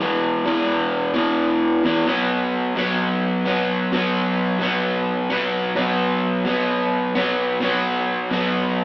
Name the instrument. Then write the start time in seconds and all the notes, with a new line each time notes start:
overdriven electric guitar
0.00 E2 B2 E3
0.45 E2 B2 E3
1.14 E2 B2 E3
1.84 E2 B2 E3
2.06 B2 F#3 B3
2.76 B2 F#3 B3
3.45 B2 F#3 B3
3.92 B2 F#3 B3
4.60 B2 F#3 B3
5.30 B2 F#3 B3
5.76 B2 F#3 B3
6.45 B2 F#3 B3
7.15 B2 F#3 B3
7.61 B2 F#3 B3
8.31 B2 F#3 B3